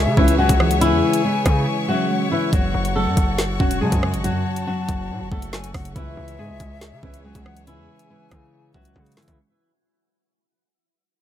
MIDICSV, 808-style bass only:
0, 0, Header, 1, 2, 480
1, 0, Start_track
1, 0, Tempo, 428571
1, 913, Time_signature, 4, 2, 24, 8
1, 12561, End_track
2, 0, Start_track
2, 0, Title_t, "808-style bass"
2, 0, Program_c, 0, 38
2, 71, Note_on_c, 0, 49, 102
2, 186, Note_off_c, 0, 49, 0
2, 193, Note_on_c, 0, 37, 104
2, 539, Note_off_c, 0, 37, 0
2, 553, Note_on_c, 0, 37, 109
2, 1032, Note_on_c, 0, 40, 98
2, 1049, Note_off_c, 0, 37, 0
2, 1147, Note_off_c, 0, 40, 0
2, 1632, Note_on_c, 0, 49, 102
2, 1863, Note_off_c, 0, 49, 0
2, 2832, Note_on_c, 0, 30, 114
2, 3063, Note_off_c, 0, 30, 0
2, 3072, Note_on_c, 0, 30, 111
2, 3432, Note_on_c, 0, 42, 102
2, 3448, Note_off_c, 0, 30, 0
2, 3546, Note_off_c, 0, 42, 0
2, 3552, Note_on_c, 0, 30, 106
2, 4013, Note_off_c, 0, 30, 0
2, 4033, Note_on_c, 0, 28, 110
2, 4272, Note_on_c, 0, 49, 97
2, 4289, Note_off_c, 0, 28, 0
2, 4387, Note_off_c, 0, 49, 0
2, 4393, Note_on_c, 0, 42, 106
2, 4632, Note_on_c, 0, 32, 103
2, 4649, Note_off_c, 0, 42, 0
2, 4813, Note_on_c, 0, 42, 99
2, 4829, Note_off_c, 0, 32, 0
2, 4984, Note_off_c, 0, 42, 0
2, 5473, Note_on_c, 0, 30, 107
2, 5714, Note_on_c, 0, 45, 100
2, 5730, Note_off_c, 0, 30, 0
2, 5834, Note_on_c, 0, 30, 96
2, 5851, Note_off_c, 0, 45, 0
2, 5948, Note_off_c, 0, 30, 0
2, 5954, Note_on_c, 0, 30, 107
2, 6414, Note_off_c, 0, 30, 0
2, 6434, Note_on_c, 0, 30, 107
2, 6664, Note_off_c, 0, 30, 0
2, 6673, Note_on_c, 0, 37, 116
2, 6904, Note_off_c, 0, 37, 0
2, 6913, Note_on_c, 0, 37, 112
2, 7154, Note_on_c, 0, 44, 101
2, 7170, Note_off_c, 0, 37, 0
2, 7274, Note_on_c, 0, 37, 99
2, 7290, Note_off_c, 0, 44, 0
2, 7387, Note_off_c, 0, 37, 0
2, 7393, Note_on_c, 0, 37, 107
2, 7754, Note_on_c, 0, 49, 101
2, 7770, Note_off_c, 0, 37, 0
2, 7867, Note_off_c, 0, 49, 0
2, 7874, Note_on_c, 0, 37, 105
2, 8219, Note_off_c, 0, 37, 0
2, 8233, Note_on_c, 0, 37, 110
2, 8713, Note_on_c, 0, 40, 103
2, 8730, Note_off_c, 0, 37, 0
2, 8827, Note_off_c, 0, 40, 0
2, 9313, Note_on_c, 0, 49, 104
2, 9774, Note_off_c, 0, 49, 0
2, 9793, Note_on_c, 0, 37, 111
2, 10024, Note_off_c, 0, 37, 0
2, 10033, Note_on_c, 0, 49, 109
2, 10263, Note_off_c, 0, 49, 0
2, 10272, Note_on_c, 0, 49, 108
2, 10385, Note_off_c, 0, 49, 0
2, 10392, Note_on_c, 0, 49, 106
2, 10508, Note_off_c, 0, 49, 0
2, 12561, End_track
0, 0, End_of_file